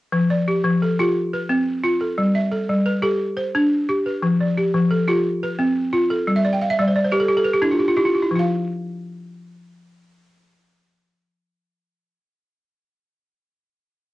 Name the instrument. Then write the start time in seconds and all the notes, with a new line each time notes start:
balafon
0.12 F3
0.30 D5
0.48 G4
0.64 F3
0.82 A4
0.99 F4 G4
1.33 B4
1.49 C4
1.84 F4
2.01 A4
2.18 G3
2.35 E5
2.52 A4
2.69 G3
2.86 B4
3.02 G4 A4
3.37 C5
3.55 D4
3.89 G4
4.06 B4
4.22 F3
4.40 D5
4.57 G4
4.74 F3
4.91 A4
5.08 F4 G4
5.43 B4
5.59 C4
5.93 F4
6.10 A4
6.27 G3
6.36 E5
6.45 D5
6.53 G5
6.61 F5
6.70 E5
6.79 G3 D5
6.88 C5
6.96 D5
7.04 C5
7.12 G4 B4
7.20 A4
7.28 G4
7.37 A4
7.44 B4
7.54 G4
7.62 D4 E4
7.71 F4
7.79 G4
7.88 F4
7.97 E4 G4
8.05 F4
8.15 G4
8.22 E4
8.31 F3
8.35 F4 F5